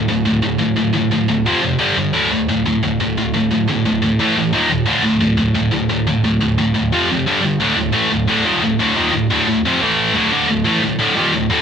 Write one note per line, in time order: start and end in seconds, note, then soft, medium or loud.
0.08 0.24 D2 medium
0.08 0.25 A2 medium
0.25 0.41 D2 medium
0.25 0.41 A2 medium
0.42 0.58 D2 medium
0.42 0.59 A2 medium
0.59 0.75 D2 medium
0.59 0.76 A2 medium
0.77 0.93 D2 medium
0.77 0.92 A2 medium
0.94 1.10 D2 medium
0.94 1.10 A2 medium
1.12 1.28 D2 medium
1.12 1.28 A2 medium
1.29 1.45 D2 medium
1.29 1.45 A2 medium
1.46 1.61 F2 loud
1.46 1.62 C3 medium
1.46 1.63 F3 loud
1.62 1.78 F2 medium
1.62 1.79 C3 medium
1.79 1.96 G2 loud
1.79 1.97 D3 loud
1.79 1.97 G3 medium
1.97 2.13 G2 medium
1.97 2.13 D3 medium
2.13 2.30 D2 medium
2.13 2.30 A2 loud
2.13 2.31 D3 medium
2.31 2.47 D2 medium
2.31 2.48 A2 medium
2.49 2.64 D2 medium
2.49 2.65 A2 medium
2.66 2.81 D2 medium
2.66 2.82 A2 medium
2.83 2.98 D2 medium
2.83 2.99 A2 medium
3.00 3.16 D2 medium
3.00 3.16 A2 medium
3.18 3.33 D2 medium
3.18 3.33 A2 medium
3.34 3.50 D2 medium
3.34 3.50 A2 medium
3.51 3.67 D2 medium
3.51 3.67 A2 medium
3.68 3.84 D2 medium
3.68 3.84 A2 medium
3.86 4.01 D2 medium
3.86 4.01 A2 medium
4.02 4.18 D2 medium
4.02 4.18 A2 medium
4.19 4.35 A2 medium
4.19 4.35 E3 medium
4.19 4.36 A3 loud
4.36 4.52 A2 medium
4.36 4.52 E3 medium
4.53 4.68 D#2 medium
4.53 4.69 A#2 medium
4.53 4.70 D#3 loud
4.70 4.85 D#2 medium
4.70 4.86 A#2 medium
4.86 5.01 D2 medium
4.86 5.02 A2 loud
4.86 5.03 D3 loud
5.03 5.19 D2 medium
5.03 5.19 A2 medium
5.20 5.36 D2 medium
5.20 5.36 A2 loud
5.37 5.53 D2 medium
5.37 5.54 A2 medium
5.54 5.70 D2 medium
5.54 5.71 A2 loud
5.71 5.87 D2 medium
5.71 5.88 A2 medium
5.89 6.05 D2 medium
5.89 6.05 A2 medium
6.07 6.22 D2 medium
6.07 6.23 A2 medium
6.24 6.39 D2 medium
6.24 6.39 A2 medium
6.41 6.56 D2 medium
6.41 6.56 A2 loud
6.58 6.73 D2 medium
6.58 6.74 A2 loud
6.74 6.90 D2 medium
6.74 6.90 A2 medium
6.92 7.08 F2 medium
6.92 7.08 C3 loud
6.92 7.09 F3 loud
7.10 7.25 F2 medium
7.10 7.25 C3 medium
7.26 7.40 G2 loud
7.26 7.41 D3 medium
7.26 7.42 G3 loud
7.41 7.57 G2 medium
7.41 7.58 D3 medium
7.60 7.75 D2 medium
7.60 7.75 A2 medium
7.60 7.77 D3 loud
7.76 7.90 D2 medium
7.76 7.90 A2 medium
7.93 8.10 A2 loud
7.93 8.10 E3 loud
7.93 8.11 A3 loud
8.11 8.25 D2 medium
8.11 8.25 A2 medium
8.28 8.44 D2 medium
8.28 8.44 A2 loud
8.28 8.45 D3 loud
8.45 8.61 D#2 medium
8.45 8.62 A#2 medium
8.45 8.62 D#3 loud
8.63 8.76 D2 medium
8.63 8.76 A2 medium
8.79 8.95 D2 loud
8.79 8.96 A2 medium
8.79 8.96 D3 loud
8.96 9.12 D#2 medium
8.96 9.12 A#2 loud
8.96 9.13 D#3 medium
9.12 9.26 D2 medium
9.12 9.26 A2 medium
9.30 9.46 D2 loud
9.30 9.47 A2 loud
9.30 9.47 D3 loud
9.47 9.61 D2 medium
9.47 9.61 A2 medium
9.65 9.80 F2 medium
9.65 9.81 C3 loud
9.65 9.81 F3 medium
9.81 10.14 A2 medium
9.81 10.14 E3 medium
9.81 10.15 A3 loud
10.14 10.31 D2 loud
10.14 10.31 A2 loud
10.14 10.31 D3 loud
10.32 10.47 D2 medium
10.32 10.47 A2 medium
10.32 10.49 D3 loud
10.48 10.62 D2 medium
10.48 10.62 A2 medium
10.64 10.81 A2 loud
10.64 10.82 E3 loud
10.64 10.82 A3 loud
10.83 10.96 D2 medium
10.83 10.96 A2 medium
10.99 11.15 D2 medium
10.99 11.16 A2 loud
10.99 11.16 D3 loud
11.15 11.32 D#2 medium
11.15 11.33 A#2 loud
11.15 11.33 D#3 medium
11.33 11.47 D2 medium
11.33 11.47 A2 medium
11.50 11.62 D2 medium
11.50 11.62 A2 loud
11.50 11.62 D3 loud